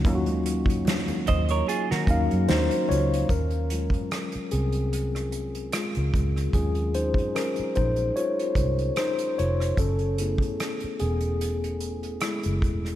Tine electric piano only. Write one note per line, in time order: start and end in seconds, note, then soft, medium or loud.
0.00 0.05 F#3 medium
0.00 0.06 A#3 medium
0.00 0.07 C#4 medium
0.00 0.07 D#4 medium
0.00 0.15 F#4 medium
0.05 1.42 F#3 medium
0.05 1.42 A#3 medium
0.05 1.42 C#4 medium
0.05 1.43 D#4 medium
0.05 0.14 F4 medium
0.15 1.47 F#4 medium
2.07 3.11 F#3 medium
2.07 3.12 A#3 medium
2.07 3.12 C#4 medium
2.07 2.49 D#4 medium
2.07 3.13 F5 medium
2.49 2.87 D#4 medium
2.49 2.86 C5 medium
2.89 3.27 F4 medium
2.89 3.30 C#5 medium
3.30 3.71 C#4 medium
3.30 4.55 A#4 medium
3.71 4.88 F#3 soft
3.71 4.88 G#3 soft
3.71 4.88 C#4 soft
3.71 4.89 F4 soft
4.52 5.70 C4 medium
4.52 5.76 G#4 medium
5.73 6.51 G#3 medium
5.73 6.54 F4 medium
6.54 7.10 F#3 soft
6.54 7.10 G#3 soft
6.54 6.92 C#4 medium
6.54 7.10 F4 soft
6.54 6.92 G#4 medium
6.95 7.33 D#4 medium
6.95 7.32 C5 medium
7.35 7.54 C#4 medium
7.35 7.53 A#4 medium
7.76 8.14 D#4 medium
7.76 8.17 C5 medium
8.16 8.94 F4 medium
8.16 8.99 C#5 medium
8.97 9.36 D#4 medium
8.97 9.39 C5 medium
9.39 9.76 F4 medium
9.39 9.76 C#5 medium
9.79 10.97 C#4 medium
9.79 11.03 A4 medium
10.19 10.75 A3 soft
10.19 10.75 B3 soft
10.19 10.75 E4 medium
10.19 10.75 G#4 soft
11.00 12.18 B3 medium
11.00 12.17 G#4 medium
12.22 12.96 G#3 medium
12.22 12.96 E4 medium